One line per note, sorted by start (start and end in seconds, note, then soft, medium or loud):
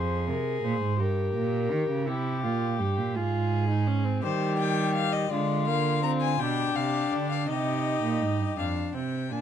0.00 0.30 F2 medium
0.00 0.98 G#4 medium
0.00 0.28 C5 medium
0.28 0.63 C3 medium
0.28 0.66 A#4 medium
0.64 0.81 A#2 medium
0.64 1.01 C5 medium
0.81 1.01 G#2 medium
0.99 1.35 G2 medium
0.99 2.06 G4 medium
0.99 2.09 A#4 medium
1.35 1.73 A#2 medium
1.72 1.89 D#3 medium
1.90 2.09 C#3 medium
2.08 2.45 C3 medium
2.08 2.43 E4 medium
2.08 3.16 G4 medium
2.44 2.81 A#2 medium
2.44 2.79 F4 medium
2.80 2.99 G2 medium
2.80 3.17 G4 medium
2.98 3.17 A#2 medium
3.15 4.25 G#2 medium
3.15 3.69 F4 medium
3.15 4.22 G#4 medium
3.69 3.89 D#4 medium
3.87 4.06 C#4 medium
4.05 4.24 C4 medium
4.23 5.31 D#3 medium
4.23 5.31 G3 medium
4.23 5.29 G4 medium
4.23 4.57 C5 medium
4.59 4.94 G5 medium
4.95 5.14 F5 medium
5.13 5.32 D#5 medium
5.31 6.38 D3 medium
5.31 5.69 G#3 medium
5.31 6.42 F4 medium
5.31 5.67 D5 medium
5.67 6.04 A#3 medium
5.67 6.03 F5 medium
6.03 6.40 C4 medium
6.03 6.11 A#5 medium
6.21 6.41 G#5 medium
6.40 6.76 B2 medium
6.40 7.51 D4 medium
6.40 7.49 G4 medium
6.40 6.77 G5 medium
6.76 7.12 C3 medium
6.76 7.14 F5 medium
7.12 7.48 D3 medium
7.12 7.29 D5 medium
7.30 7.48 F5 medium
7.48 8.02 C3 medium
7.48 8.58 D#4 medium
7.48 8.57 G4 medium
7.48 8.56 D#5 medium
8.03 8.23 A#2 medium
8.21 8.41 G#2 medium
8.40 8.57 G2 medium
8.58 8.92 F2 medium
8.58 8.96 D4 medium
8.58 8.93 F5 medium
8.95 9.33 C3 medium
8.95 9.31 C4 medium
8.95 9.33 G5 medium
9.31 9.41 A#2 medium
9.31 9.41 D4 medium
9.31 9.41 G#5 medium